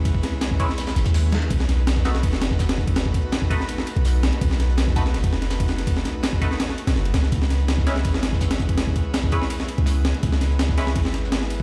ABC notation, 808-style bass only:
X:1
M:4/4
L:1/16
Q:1/4=165
K:C#m
V:1 name="808-style bass" clef=bass
G,,,2 C,,2 B,,,6 G,,, D,,4- D,, | B,,,8 F,,,8- | F,,,2 B,,,2 A,,,6 z B,,,4 z | B,,,8 F,,,8- |
F,,,2 B,,,2 A,,,6 z B,,, F,,,2 C,,2 | C,,8 G,,,8- | G,,,2 C,,2 B,,,6 z C,,4 z | C,,8 G,,,8 |]